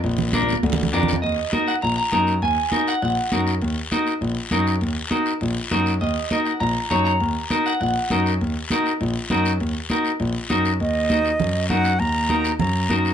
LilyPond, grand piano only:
\new Staff \with { instrumentName = "Grand piano" } { \clef bass \time 4/4 \key bes \phrygian \tempo 4 = 200 bes,,2 d,4 f,4 | \key ees \minor ees,8 r4. bes,,8 r8 ges,4 | ees,8 r4. bes,,8 r8 ges,4 | ees,8 r4. bes,,8 r8 ges,4 |
ees,8 r4. bes,,8 r8 ges,4 | ees,8 r4. bes,,8 r8 ges,4 | ees,8 r4. bes,,8 r8 ges,4 | ees,8 r4. bes,,8 r8 ges,4 |
ees,8 r4. bes,,8 r8 ges,4 | ees,2 ges,4 ges,4 | ees,2 ges,4 ges,4 | }